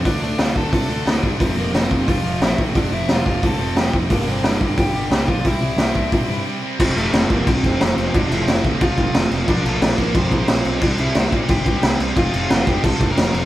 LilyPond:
<<
  \new Staff \with { instrumentName = "Overdriven electric guitar" } { \time 4/4 \key f \major \tempo 4 = 179 <d' d''>8 <d' d''>8 <f' f''>8 <a' a''>8 <a' a''>4. r8 | <a a'>8 <bes bes'>8 <c' c''>4 <f' f''>4 <e' e''>8 r8 | <d' d''>8 <e' e''>8 <f' f''>4 <a' a''>4 <g' g''>8 r8 | <bes bes'>8 <c' c''>8 <d' d''>4 <g' g''>4. <f' f''>8 |
<e' e''>2. r4 | <c' c''>8 <a a'>4 <bes bes'>8 <c' c''>8 <c' c''>4. | <d' d''>8 <e' e''>4 r8 <f' f''>4. r8 | <d' d''>8 <a a'>4 <bes bes'>8 <c' c''>8 <c' c''>4. |
<d' d''>8 <e' e''>4 r8 <g' g''>4. r8 | <f' f''>4 <f' f''>8 <g' g''>8 <a' a''>8. <bes' bes''>8. <a' a''>8 | }
  \new Staff \with { instrumentName = "Distorted electric guitar" } { \clef bass \time 4/4 \key f \major <d f a d'>8 <d f a d'>8 <d f a d'>8 <d f a d'>8 <d f a d'>8 <d f a d'>8 <d f a d'>8 <d f a d'>8 | <f, c f a c'>8 <f, c f a c'>8 <f, c f a c'>8 <f, c f a c'>8 <f, c f a c'>8 <f, c f a c'>8 <f, c f a c'>8 <f, c f a c'>8 | <f, c f a c'>8 <f, c f a c'>8 <f, c f a c'>8 <f, c f a c'>8 <f, c f a c'>8 <f, c f a c'>8 <f, c f a c'>8 <f, c f a c'>8 | <g, d g bes d'>8 <g, d g bes d'>8 <g, d g bes d'>8 <g, d g bes d'>8 <g, d g bes d'>8 <g, d g bes d'>8 <g, d g bes d'>8 <g, d g bes d'>8 |
<c g c' e'>8 <c g c' e'>8 <c g c' e'>8 <c g c' e'>8 <c g c' e'>8 <c g c' e'>8 <c g c' e'>8 <c g c' e'>8 | <f, c f a c'>1 | <f, c f a c'>1 | <bes, f bes d'>1 |
<c g c' e'>1 | <f, c f a c'>1 | }
  \new Staff \with { instrumentName = "Distorted electric guitar" } { \clef bass \time 4/4 \key f \major <d a d'>8 <d a d'>8 <d a d'>8 <d a d'>8 <d a d'>8 <d a d'>8 <d a d'>8 <d a d'>8 | <f, c f>8 <f, c f>8 <f, c f>8 <f, c f>8 <f, c f>8 <f, c f>8 <f, c f>8 <f, c f>8 | <f, c f>8 <f, c f>8 <f, c f>8 <f, c f>8 <f, c f>8 <f, c f>8 <f, c f>8 <f, c f>8 | <g, d g>8 <g, d g>8 <g, d g>8 <g, d g>8 <g, d g>8 <g, d g>8 <g, d g>8 <g, d g>8 |
<c g c'>8 <c g c'>8 <c g c'>8 <c g c'>8 <c g c'>8 <c g c'>8 <c g c'>8 <c g c'>8 | <f, c f>4. <f, c f>2~ <f, c f>8 | <f, c f>4. <f, c f>2~ <f, c f>8 | <bes, f bes>4. <bes, f bes>2~ <bes, f bes>8 |
<c g c'>4. <c g c'>2~ <c g c'>8 | <f, c f>4. <f, c f>2~ <f, c f>8 | }
  \new Staff \with { instrumentName = "Picked electric bass" } { \clef bass \time 4/4 \key f \major d,8 d,8 d,8 d,8 c8 d,8 d,8 g,8 | f,,8 f,,8 f,,8 f,,8 f,,8 f,,8 bes,,8 a,,8 | f,,8 f,,8 f,,8 f,,8 d,8 f,,8 f,,8 f,8 | g,,8 g,,8 g,,8 g,,8 g,,8 g,,8 c,8 bes,,8 |
c,8 c,8 c,8 c,8 bes,8 g,8 r4 | f,,8 f,,8 f,,8 f,,8 c,8 f,,8 f,,8 f,,8 | f,,8 f,,8 f,,8 d,8 c,8 f,,8 f,,8 f,,8 | bes,,8 bes,,8 bes,,8 bes,,8 f,8 bes,,8 bes,,8 b,,8 |
c,8 c,8 c,8 bes,8 g,,8 c,8 c,8 c,8 | f,,8 f,,8 f,,8 f,,8 c,8 f,,8 f,,8 f,,8 | }
  \new DrumStaff \with { instrumentName = "Drums" } \drummode { \time 4/4 <hho bd>4 <hho sn>8 bd8 <hho bd>4 <hho sn>8 bd8 | <hho bd>4 <hho sn>8 bd8 <hho bd>4 <hho sn>8 bd8 | <hho bd>4 <hho sn>8 bd8 <hho bd>4 <hho sn>8 bd8 | <hho bd>4 <hho sn>8 bd8 <hho bd>4 <hho sn>8 bd8 |
<hho bd>4 <hho sn>8 bd8 <hho bd>4 r4 | <cymc bd>8 cymc8 <cymc sn>8 <cymc bd>8 <cymc bd>8 <cymc bd>8 <cymc sn>8 cymc8 | <cymc bd>8 cymc8 <cymc sn>8 <cymc bd>8 <cymc bd>8 <cymc bd>8 <cymc sn>8 cymc8 | <cymc bd>8 cymc8 <cymc sn>8 <cymc bd>8 <cymc bd>8 <cymc bd>8 <cymc sn>8 cymc8 |
<cymc bd>8 cymc8 <cymc sn>8 <cymc bd>8 <cymc bd>8 <cymc bd>8 <cymc sn>8 cymc8 | <cymc bd>8 cymc8 <cymc sn>8 <cymc bd>8 <cymc bd>8 <cymc bd>8 <cymc sn>8 cymc8 | }
>>